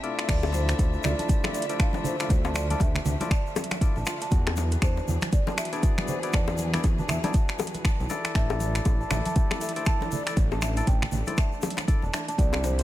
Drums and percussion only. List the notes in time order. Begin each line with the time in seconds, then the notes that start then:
0.04 closed hi-hat
0.19 finger snap, closed hi-hat
0.28 finger snap, kick, closed hi-hat, crash, muted conga, high conga, shaker
0.43 high bongo, shaker
0.53 closed hi-hat, low bongo, high conga, shaker
0.69 finger snap, closed hi-hat, shaker
0.79 kick, closed hi-hat, high bongo, shaker
0.93 shaker
1.03 finger snap, low bongo, low conga, shaker
1.19 closed hi-hat, muted conga, high conga, shaker
1.29 kick, closed hi-hat, low conga, shaker
1.44 finger snap, high bongo, low bongo, high conga, shaker
1.54 closed hi-hat, muted conga, shaker
1.62 closed hi-hat
1.69 closed hi-hat, shaker
1.80 finger snap, kick, closed hi-hat, shaker
1.93 low bongo, muted conga, high conga, shaker
2.04 closed hi-hat, low conga, shaker
2.20 finger snap, closed hi-hat, shaker
2.28 kick, closed hi-hat, low bongo, muted conga, high conga, shaker
2.44 high bongo, shaker
2.54 finger snap, closed hi-hat, high conga, shaker
2.70 closed hi-hat, muted conga, high conga, shaker
2.80 kick, closed hi-hat, low bongo, shaker
2.95 finger snap, low conga, shaker
3.05 closed hi-hat, low conga, shaker
3.20 closed hi-hat, low bongo, muted conga, high conga, shaker
3.31 finger snap, kick, closed hi-hat, shaker
3.46 shaker
3.55 closed hi-hat, high bongo, muted conga, high conga, shaker
3.64 closed hi-hat
3.71 finger snap, closed hi-hat, low bongo, high conga, shaker
3.81 kick, closed hi-hat, shaker
3.96 muted conga, shaker
4.06 finger snap, closed hi-hat, low bongo, shaker
4.21 closed hi-hat, shaker
4.31 kick, closed hi-hat, muted conga, high conga, shaker
4.47 finger snap, high bongo, shaker
4.56 closed hi-hat, low bongo, high conga, shaker
4.71 closed hi-hat, muted conga, shaker
4.82 finger snap, kick, closed hi-hat, high bongo, shaker
4.97 low bongo, shaker
5.08 low conga, shaker
5.22 finger snap, closed hi-hat, muted conga, high conga, shaker
5.32 kick, closed hi-hat, low conga, shaker
5.47 high bongo, low bongo, high conga, shaker
5.57 finger snap, closed hi-hat, muted conga, shaker
5.65 closed hi-hat
5.73 closed hi-hat, shaker
5.83 kick, closed hi-hat, low bongo, shaker
5.98 finger snap, muted conga, high conga, shaker
6.08 closed hi-hat, low conga, shaker
6.23 closed hi-hat, shaker
6.32 finger snap, kick, closed hi-hat, low bongo, muted conga, high conga, shaker
6.48 high bongo, shaker
6.58 closed hi-hat, high conga, shaker
6.74 finger snap, closed hi-hat, low bongo, muted conga, high conga, shaker
6.84 kick, closed hi-hat, high bongo, shaker
6.98 low conga, shaker
7.08 finger snap, closed hi-hat, low conga, shaker
7.23 closed hi-hat, low bongo, muted conga, high conga, shaker
7.34 kick, closed hi-hat, shaker
7.49 finger snap, shaker
7.59 closed hi-hat, high bongo, low bongo, muted conga, high conga, shaker
7.67 closed hi-hat
7.74 closed hi-hat, high conga, shaker
7.85 finger snap, kick, closed hi-hat, shaker
8.00 muted conga, shaker
8.10 closed hi-hat, low bongo, shaker
8.25 finger snap, closed hi-hat, shaker
8.35 finger snap, kick, closed hi-hat, muted conga, high conga, shaker
8.50 high bongo, shaker
8.60 closed hi-hat, low bongo, high conga, shaker
8.75 finger snap, closed hi-hat, muted conga, shaker
8.85 kick, closed hi-hat, high bongo, shaker
9.01 shaker
9.11 finger snap, low bongo, low conga, shaker
9.26 closed hi-hat, muted conga, high conga, shaker
9.36 kick, closed hi-hat, low conga, shaker
9.51 finger snap, high bongo, low bongo, high conga, shaker
9.61 closed hi-hat, muted conga, shaker
9.69 closed hi-hat
9.76 closed hi-hat, shaker
9.85 finger snap, kick, closed hi-hat, shaker
10.01 low bongo, muted conga, high conga, shaker
10.12 closed hi-hat, low conga, shaker
10.27 finger snap, closed hi-hat, shaker
10.36 kick, closed hi-hat, low bongo, muted conga, high conga, shaker
10.51 high bongo, shaker
10.62 finger snap, closed hi-hat, high conga, shaker
10.76 closed hi-hat, muted conga, high conga, shaker
10.87 kick, closed hi-hat, low bongo, shaker
11.02 finger snap, low conga, shaker
11.11 closed hi-hat, low conga, shaker
11.26 closed hi-hat, low bongo, muted conga, high conga, shaker
11.37 finger snap, kick, closed hi-hat, shaker
11.52 shaker
11.62 closed hi-hat, high bongo, muted conga, high conga, shaker
11.70 closed hi-hat
11.77 finger snap, closed hi-hat, low bongo, high conga, shaker
11.88 kick, closed hi-hat, shaker
12.02 muted conga, shaker
12.14 finger snap, closed hi-hat, low bongo, shaker
12.28 closed hi-hat, shaker
12.38 kick, closed hi-hat, muted conga, high conga, shaker
12.53 finger snap, high bongo, shaker
12.63 closed hi-hat, low bongo, high conga, shaker
12.78 closed hi-hat, muted conga, shaker